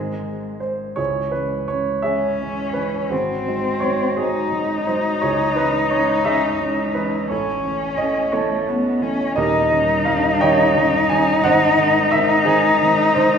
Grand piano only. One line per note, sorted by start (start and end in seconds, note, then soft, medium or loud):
0.00 0.95 G#1 soft
0.00 0.95 G#2 soft
0.00 0.95 D#3 soft
0.00 0.95 G#3 soft
0.00 0.95 C4 medium
0.00 0.58 D#4 medium
0.00 0.62 G#4 medium
0.60 0.98 C5 medium
0.96 1.33 C#2 medium
0.96 1.31 E4 medium
0.96 1.31 G#4 medium
0.96 1.33 C#5 medium
1.31 1.66 E3 soft
1.31 1.66 G#3 soft
1.31 1.66 C#4 soft
1.31 1.69 B4 medium
1.68 2.02 E3 soft
1.68 2.02 G#3 soft
1.68 2.02 C#4 soft
1.68 2.02 C#5 medium
2.02 2.36 E3 soft
2.02 2.37 G#3 soft
2.02 2.37 C#4 medium
2.02 2.71 G#4 medium
2.02 2.71 C#5 medium
2.02 2.75 E5 medium
2.41 2.73 E3 soft
2.41 2.73 G#3 soft
2.41 2.73 C#4 soft
2.74 3.08 E3 soft
2.74 3.08 G#3 soft
2.74 3.08 C#4 soft
2.74 3.10 B4 medium
3.09 3.46 G#1 medium
3.09 3.78 F#4 medium
3.09 3.78 G#4 medium
3.09 3.82 C5 medium
3.47 3.79 F#3 soft
3.47 3.79 G#3 soft
3.47 3.80 D#4 soft
3.80 4.15 F#3 soft
3.80 4.14 G#3 soft
3.80 4.15 D#4 soft
3.80 4.17 C#5 medium
4.17 4.50 F#3 soft
4.17 4.50 G#3 soft
4.17 4.84 C4 medium
4.17 4.52 D#4 medium
4.17 4.87 G#4 medium
4.53 4.84 F#3 soft
4.53 4.85 G#3 soft
4.53 4.85 D#4 soft
4.87 5.20 F#3 soft
4.87 5.20 G#3 soft
4.87 5.20 D#4 soft
4.87 5.22 C5 medium
5.21 5.56 C#2 medium
5.21 5.55 E4 medium
5.21 5.55 G#4 medium
5.21 5.57 C#5 medium
5.56 5.89 E3 soft
5.56 5.89 G#3 soft
5.56 5.89 C#4 soft
5.56 5.91 B4 medium
5.91 6.23 E3 soft
5.91 6.24 G#3 soft
5.91 6.24 C#4 soft
5.91 6.24 C#5 medium
6.25 6.58 E3 soft
6.25 6.58 G#3 soft
6.25 6.58 C#4 medium
6.25 6.92 G#4 medium
6.25 6.92 C#5 medium
6.25 6.96 E5 loud
6.60 6.92 E3 soft
6.60 6.93 G#3 soft
6.60 6.93 C#4 soft
6.95 7.28 E3 soft
6.95 7.28 G#3 soft
6.95 7.28 C#4 medium
6.95 7.30 B4 medium
7.29 7.64 A1 medium
7.29 7.95 E4 medium
7.29 7.95 A4 medium
7.29 7.98 C#5 medium
7.65 7.96 E3 soft
7.65 7.96 A3 soft
7.65 7.96 C#4 medium
7.97 8.30 E3 soft
7.97 8.30 A3 soft
7.97 8.31 C#4 medium
7.97 8.33 D#5 loud
8.32 8.64 E3 medium
8.32 8.65 A3 medium
8.32 8.65 C#4 medium
8.32 8.65 E4 medium
8.32 8.65 A4 medium
8.32 8.67 C#5 medium
8.67 8.98 E3 soft
8.67 8.99 A3 medium
8.67 8.99 C#4 medium
9.01 9.33 E3 soft
9.01 9.33 A3 soft
9.01 9.34 C#4 medium
9.36 9.72 D#1 medium
9.36 9.72 D#2 medium
9.36 10.04 G4 medium
9.36 10.04 A#4 medium
9.36 10.07 D#5 loud
9.71 10.04 D#3 medium
9.71 10.03 G3 medium
9.71 10.04 C#4 medium
10.05 10.39 D#3 soft
10.05 10.39 G3 medium
10.05 10.39 C#4 medium
10.05 10.41 F5 loud
10.41 10.74 D#3 medium
10.41 10.74 G3 medium
10.41 10.74 C#4 medium
10.41 11.06 C#5 medium
10.41 11.07 D#5 medium
10.41 11.10 G5 loud
10.77 11.08 D#3 medium
10.77 11.08 G3 medium
10.77 11.08 C#4 medium
11.10 11.42 D#3 medium
11.10 11.43 G3 medium
11.10 11.43 C#4 medium
11.10 11.45 G#5 loud
11.44 11.79 G#1 medium
11.44 12.10 C5 medium
11.44 12.10 D#5 medium
11.44 12.13 F#5 loud
11.78 12.10 D#3 medium
11.78 12.10 G#3 medium
11.78 12.10 C4 medium
12.11 12.45 D#3 medium
12.11 12.45 G#3 medium
12.11 12.45 C4 medium
12.11 12.47 E5 loud
12.45 12.79 D#3 medium
12.45 12.79 G#3 medium
12.45 12.82 C4 medium
12.45 13.13 D#4 medium
12.45 13.17 G#4 loud
12.82 13.14 D#3 medium
12.82 13.14 G#3 medium
12.82 13.15 C4 medium
13.15 13.38 D#3 medium
13.15 13.38 G#3 medium
13.15 13.38 C4 medium
13.15 13.38 C5 loud